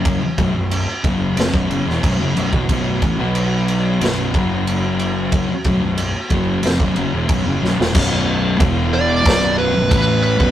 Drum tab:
CC |x-x-x-x-x-x-x-x-|x-x-x-x-x-x-x-x-|x-x-x-x-x-x-x---|x---x---x---x---|
SD |--------o--o----|--------o-------|--------o-----oo|--------o-------|
BD |o-o---o--o--o--o|o-o-------o-----|o-o---o--o--o---|o---o---o---o--o|